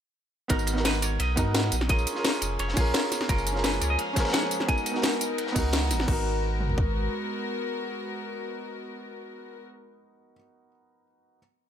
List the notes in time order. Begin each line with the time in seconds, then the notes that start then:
0.48 G#1 B3 D#4 F#4 A#4, kick, closed hi-hat, ride
0.59 tambourine
0.67 closed hi-hat, ride, tambourine
0.73 B3 D#4, snare
0.78 F#4 A#4
0.85 B4, snare, closed hi-hat, ride
0.94 tambourine
1.02 C#5, closed hi-hat, ride, tambourine
1.20 B1 D#5, closed hi-hat, ride
1.36 G#2 B3 D#4 F#4 A#4, kick, closed hi-hat, ride, tambourine
1.55 snare, closed hi-hat, ride
1.64 snare
1.72 A#1, closed hi-hat, ride, tambourine
1.81 snare, ride
1.88 C#4 F4 G#4 A#4 D#5, kick, closed hi-hat, ride
1.99 tambourine
2.07 closed hi-hat, ride, tambourine
2.13 C#4 F4, snare
2.17 G#4 A#4
2.24 snare, closed hi-hat, ride
2.34 tambourine
2.42 F1, closed hi-hat, ride, tambourine
2.59 F1 C#5, closed hi-hat, ride
2.68 snare
2.74 A#1 C#4 F4 G#4, kick, closed hi-hat, open hi-hat, tambourine
2.78 G#4 A#4
2.94 snare, closed hi-hat, ride
3.12 snare, closed hi-hat, ride, tambourine
3.21 snare
3.28 F#1 F3 G#3 A#3 C#4 F4 G#4 A#4, kick, closed hi-hat, ride
3.38 tambourine
3.46 closed hi-hat, ride, tambourine
3.52 C#4 F4, snare
3.56 G#4 A#4
3.64 B4, snare, closed hi-hat, ride
3.73 tambourine
3.81 C#2 C#5, closed hi-hat, ride, tambourine
3.90 D#5
3.98 F5, closed hi-hat, ride
4.13 F3 C#4, kick, snare, closed hi-hat, ride, tambourine
4.18 G#4 A#4
4.25 snare, ride
4.30 F#5, snare, ride
4.34 snare, closed hi-hat, ride
4.43 snare
4.51 closed hi-hat, ride, tambourine
4.60 snare, ride
4.67 B3 D#4 F#4 A#4 G#5, kick, closed hi-hat, ride
4.78 tambourine
4.86 closed hi-hat, ride, tambourine
4.92 B3 D#4, snare
4.96 F#4 A#4
5.02 snare, closed hi-hat, ride
5.13 tambourine
5.21 closed hi-hat, ride, tambourine
5.38 closed hi-hat, ride
5.47 snare
5.52 C#2 B3 D#4, kick, closed hi-hat, open hi-hat, tambourine
5.56 F#4 A#4
5.73 snare, closed hi-hat, ride
5.91 G#1, snare, closed hi-hat, ride, tambourine
6.00 B3, snare
6.06 G#1 G#3 B3 D#4 F#4 A#4, kick, crash
6.12 A#4
6.61 mid tom
6.69 floor tom
6.78 kick